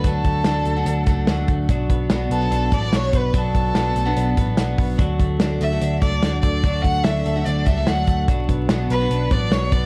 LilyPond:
<<
  \new Staff \with { instrumentName = "Violin" } { \time 4/4 \key d \major \tempo 4 = 146 a'2. r4 | r4. a'4 d''8 cis''8 b'8 | a'2. r4 | r4. e''4 d''4 d''8~ |
d''8 fis''8 e''4 d''8 e''8 fis''8. r16 | r4. b'4 d''8 cis''8 d''8 | }
  \new Staff \with { instrumentName = "Clean electric guitar" } { \time 4/4 \key d \major <fis a d'>8 a8 d'8 a8 d'8 a8 fis8 a8 | <fis d'>8 b8 d'8 b8 d'8 a16 b16 fis8 b8 | <fis d'>8 b8 d'8 a16 b16 d'8 b8 fis8 b8 | <fis d'>8 a8 d'8 a8 d'8 a8 fis8 a8 |
<fis d'>8 a8 d'8 a8 d'8 g16 a16 fis8 a8 | <fis d'>8 b8 d'8 b8 d'8 b8 fis8 b8 | }
  \new Staff \with { instrumentName = "Twelve-string acoustic guitar" } { \time 4/4 \key d \major <fis a d' fis'>4 <d fis a d' fis'>8. <d fis a d' fis'>8. <fis a d' fis'>8 <d fis a d' fis'>4 | <fis b d' fis'>4 <b, fis b d' fis'>8. <b, fis b d' fis'>8. <fis b d' fis'>8 <b, fis b d' fis'>4 | <fis b d' fis'>4 <b, fis b d' fis'>8. <b, fis b d' fis'>8. <fis b d' fis'>8 <b, fis b d' fis'>4 | <fis a d' fis'>4 <d fis a d' fis'>8. <d fis a d' fis'>8. <fis a d' fis'>8 <d fis a d' fis'>4 |
<fis a d' fis'>4 <d fis a d' fis'>8. <d fis a d' fis'>8. <fis a d' fis'>8 <d fis a d' fis'>4 | <fis b d' fis'>4 <b, fis b d' fis'>8. <b, fis b d' fis'>8. <fis b d' fis'>8 <b, fis b d' fis'>4 | }
  \new Staff \with { instrumentName = "Picked electric bass" } { \clef bass \time 4/4 \key d \major d,8 d,8 d,8 d,8 d,8 cis,8 d,8 d,8 | b,,8 b,,8 b,,8 b,,8 b,,8 a,,8 b,,8 b,,8 | b,,8 b,,8 b,,8 b,,8 b,,8 a,,8 b,,8 b,,8 | d,8 d,8 d,8 d,8 d,8 cis,8 d,8 d,8 |
d,8 d,8 d,8 d,8 d,8 cis,8 d,8 d,8 | b,,8 b,,8 b,,8 b,,8 b,,8 a,,8 b,,8 b,,8 | }
  \new DrumStaff \with { instrumentName = "Drums" } \drummode { \time 4/4 <hh bd>8 <hh bd>8 <hh sn>8 hh8 hh8 <hh bd>8 <hh sn>8 <hh bd>8 | <hh bd>8 <hh bd>8 <hh sn>8 hh8 hh8 <hh bd>8 <hh sn>8 <hh bd>8 | <hh bd>8 <hh bd>8 <hh sn>8 hh8 hh8 <hh bd>8 <hh sn>8 <hho bd>8 | <hh bd>8 <hh bd>8 <hh sn>8 hh8 hh8 <hh bd>8 <hh sn>8 <hh bd>8 |
<hh bd>8 <hh bd>8 <hh sn>8 hh8 hh8 <hh bd>8 <hh sn>8 <hh bd>8 | <hh bd>8 <hh bd>8 <hh sn>8 hh8 hh8 <hh bd>8 <hh sn>8 <hh bd>8 | }
>>